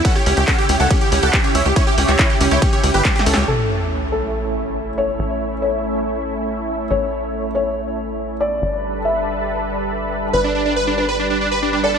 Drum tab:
RD |x-----------x-----------x-----------x-----------|x-----------x-----------x-----------x-----------|------------------------------------------------|------------------------------------------------|
HH |x--x--o--x--x--x--o--x--x--x--o--x--x--x--o--x--|x--x--o--x--x--x--o--x--x--x--o--x--x--x--o--x--|------------------------------------------------|------------------------------------------------|
CP |------------x-----------------------x-----------|---------x--x-----------------------x-----------|------------------------------------------------|------------------------------------------------|
SD |------------------------------------------------|------------------------------------o---o---o---|------------------------------------------------|------------------------------------------------|
BD |o-----------o-----------o-----------o-----------|o-----------o-----------o-----------o-----------|------------------------------------------------|------------------------------------------------|

RD |------------------------------------------------|------------------------------------------------|------------------------------------------------|
HH |------------------------------------------------|------------------------------------------------|------------------------------------------------|
CP |------------------------------------------------|------------------------------------------------|------------------------------------------------|
SD |------------------------------------------------|------------------------------------------------|------------------------------------------------|
BD |------------------------------------------------|------------------------------------------------|------------------------------------------------|